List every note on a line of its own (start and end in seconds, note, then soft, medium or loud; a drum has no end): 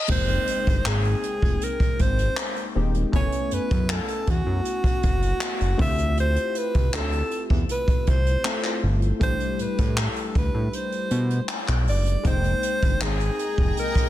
0.08 0.39 F1 loud
0.08 2.71 G#3 medium
0.08 2.71 A#3 medium
0.08 2.72 C4 medium
0.08 2.72 D#4 medium
0.08 0.89 C5 loud
0.08 2.72 G5 medium
0.08 kick loud
0.08 crash loud
0.08 impact medium
0.28 closed hi-hat medium
0.47 closed hi-hat medium
0.67 0.82 G1 medium
0.67 kick loud
0.67 closed hi-hat soft
0.86 1.15 G#1 medium
0.86 1.65 G#4 loud
0.86 clap loud
1.04 closed hi-hat soft
1.23 closed hi-hat medium
1.42 1.57 F1 medium
1.42 kick medium
1.61 2.03 A#4 loud
1.61 closed hi-hat medium
1.80 kick medium
1.80 closed hi-hat soft
1.99 2.29 G#1 loud
1.99 2.76 C5 medium
1.99 kick medium
1.99 closed hi-hat medium
2.19 closed hi-hat medium
2.37 clap loud
2.37 closed hi-hat medium
2.56 closed hi-hat soft
2.75 3.05 D#1 loud
2.75 3.13 G#3 medium
2.75 3.13 A#3 soft
2.75 3.14 C4 soft
2.75 3.14 D#4 soft
2.75 3.14 G4 medium
2.94 closed hi-hat soft
3.12 3.28 F#1 loud
3.12 5.75 A3 medium
3.12 5.75 B3 medium
3.12 5.75 C#4 medium
3.12 5.76 E4 medium
3.12 3.55 C#5 loud
3.12 5.76 G#5 medium
3.12 kick loud
3.12 closed hi-hat medium
3.32 closed hi-hat medium
3.51 3.59 F#2 soft
3.51 3.93 B4 medium
3.51 closed hi-hat medium
3.71 4.00 F#2 loud
3.71 kick loud
3.71 closed hi-hat soft
3.89 4.32 A4 loud
3.89 clap loud
4.08 closed hi-hat medium
4.27 4.42 E2 medium
4.27 5.81 F#4 loud
4.27 kick medium
4.27 closed hi-hat medium
4.46 4.61 F#2 loud
4.65 closed hi-hat medium
4.84 kick medium
4.84 closed hi-hat soft
5.03 5.33 F#1 loud
5.03 kick medium
5.03 closed hi-hat medium
5.22 closed hi-hat medium
5.41 clap loud
5.60 5.75 F#1 medium
5.60 closed hi-hat soft
5.78 6.38 D2 loud
5.78 8.40 A3 medium
5.78 8.41 C4 medium
5.78 8.41 E4 medium
5.78 8.42 F4 medium
5.78 5.87 F#4 medium
5.78 6.16 E5 loud
5.78 kick loud
5.78 open hi-hat medium
5.87 8.45 G4 medium
5.98 closed hi-hat soft
6.17 6.59 C5 loud
6.17 closed hi-hat medium
6.36 closed hi-hat medium
6.55 6.97 B4 loud
6.55 closed hi-hat medium
6.75 6.89 C2 medium
6.75 kick loud
6.75 closed hi-hat soft
6.93 7.22 D2 medium
6.93 7.43 A4 loud
6.93 clap loud
6.93 closed hi-hat medium
7.12 closed hi-hat soft
7.31 closed hi-hat medium
7.50 7.65 E2 medium
7.50 kick medium
7.69 8.11 B4 loud
7.69 closed hi-hat medium
7.88 kick loud
7.88 closed hi-hat soft
8.07 8.37 C2 loud
8.07 8.84 C5 loud
8.07 kick medium
8.07 closed hi-hat medium
8.26 closed hi-hat medium
8.44 9.18 A3 medium
8.44 9.21 C4 soft
8.44 9.21 E4 medium
8.44 9.21 F4 soft
8.44 9.21 A4 medium
8.44 clap loud
8.64 clap medium
8.64 closed hi-hat soft
8.83 9.12 G1 medium
9.02 closed hi-hat soft
9.20 9.36 A1 medium
9.20 12.20 G3 medium
9.20 12.20 A3 medium
9.20 12.21 D4 medium
9.20 12.21 E4 medium
9.20 12.22 G4 medium
9.20 9.63 C5 loud
9.20 kick loud
9.20 closed hi-hat medium
9.40 closed hi-hat medium
9.59 9.67 A2 soft
9.59 10.01 B4 loud
9.59 closed hi-hat medium
9.78 10.08 A2 loud
9.78 kick loud
9.78 closed hi-hat medium
9.97 10.36 A4 loud
9.97 clap loud
10.16 closed hi-hat soft
10.35 10.50 D2 loud
10.35 10.77 B4 loud
10.35 kick loud
10.35 closed hi-hat medium
10.54 10.69 A2 loud
10.73 11.50 C5 medium
10.73 closed hi-hat medium
10.92 closed hi-hat soft
11.11 11.40 B2 loud
11.11 closed hi-hat medium
11.30 closed hi-hat medium
11.49 clap loud
11.49 closed hi-hat medium
11.68 11.89 B1 medium
11.68 clap medium
11.68 closed hi-hat soft
11.87 12.16 F#1 medium
11.87 12.29 D5 loud
11.87 open hi-hat medium
12.06 closed hi-hat medium
12.23 12.54 F1 loud
12.23 14.09 G#3 medium
12.23 14.09 A#3 medium
12.23 14.09 C4 medium
12.23 14.09 D#4 medium
12.23 14.09 G#4 medium
12.23 13.04 C5 loud
12.23 14.09 D#5 medium
12.23 14.09 G5 medium
12.23 14.09 A#5 loud
12.23 kick loud
12.23 closed hi-hat medium
12.44 closed hi-hat medium
12.63 closed hi-hat medium
12.82 12.97 G1 medium
12.82 kick loud
12.82 closed hi-hat soft
13.01 13.30 G#1 loud
13.01 13.78 G#4 loud
13.01 clap loud
13.01 closed hi-hat medium
13.20 closed hi-hat medium
13.39 closed hi-hat medium
13.58 13.73 F1 medium
13.58 kick medium
13.77 14.09 A#4 loud
13.77 closed hi-hat medium
13.95 kick medium
13.95 cross-stick medium
13.95 closed hi-hat soft